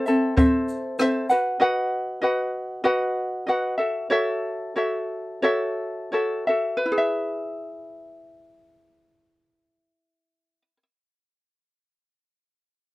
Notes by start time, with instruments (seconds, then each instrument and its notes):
0.06 ukulele C4 A4 E5, shaker
0.37 ukulele C4 A4 C5 E5, kick, shaker
0.68 shaker
0.99 ukulele C4 A4 C5 E5, cross-stick, shaker
1.29 ukulele F#4 B4 F#5, shaker
1.59 ukulele F#4 B4 D#5 F#5
2.21 ukulele F#4 B4 D#5 F#5
2.84 ukulele F#4 B4 D#5 F#5
3.47 ukulele F#4 B4 D#5 F#5
3.78 ukulele F#4 A4 E5
4.10 ukulele F#4 A4 C#5 E5
4.76 ukulele F#4 A4 C#5 E5
5.42 ukulele F#4 A4 C#5 E5
6.12 ukulele F#4 A4 C#5 E5
6.47 ukulele F#4 A4 E5
6.77 ukulele B4
6.86 ukulele E4
6.92 ukulele G#4
6.98 ukulele E5